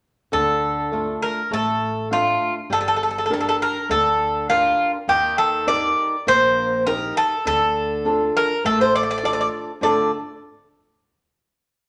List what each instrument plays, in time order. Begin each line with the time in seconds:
0.32 upright bass D2, nylon-string guitar D3, bouzouki A4
0.92 nylon-string guitar A3 D4 F4
1.22 bouzouki A#4
1.51 upright bass A1, nylon-string guitar A3, bouzouki A4
2.11 nylon-string guitar A3 D4 F4, bouzouki F4
2.70 upright bass G1, nylon-string guitar G3, bouzouki A4
2.80 bouzouki A4
2.88 bouzouki A4
2.96 bouzouki A4
3.03 bouzouki A4
3.10 bouzouki A4
3.18 bouzouki A4
3.26 bouzouki A4
3.30 nylon-string guitar D4 G4 A#4, bouzouki A4
3.40 bouzouki A4
3.49 bouzouki A4
3.62 bouzouki A#4
3.89 upright bass D2, nylon-string guitar D3, bouzouki A4
4.49 nylon-string guitar D4 G4 A#4, bouzouki F4
5.08 upright bass D#2, nylon-string guitar D#3, bouzouki G4
5.38 bouzouki A4
5.67 nylon-string guitar D#4 G4 A#4, bouzouki D5
6.27 upright bass A#1, nylon-string guitar A#3, bouzouki C5
6.87 nylon-string guitar D#4 G4 A#4, bouzouki A#4
7.17 bouzouki A4
7.45 upright bass D2, nylon-string guitar D3, bouzouki A4
8.05 nylon-string guitar D4 F4 A4
8.37 bouzouki A#4
8.64 upright bass A1, nylon-string guitar A3, bouzouki A4
8.81 bouzouki C5
8.95 bouzouki D5
9.03 bouzouki D5
9.11 bouzouki D5
9.18 bouzouki D5
9.23 nylon-string guitar D4 F4 A4, bouzouki D5
9.33 bouzouki D5
9.41 bouzouki D5
9.81 upright bass D2, nylon-string guitar D3 A3 D4 F4 A4, bouzouki D5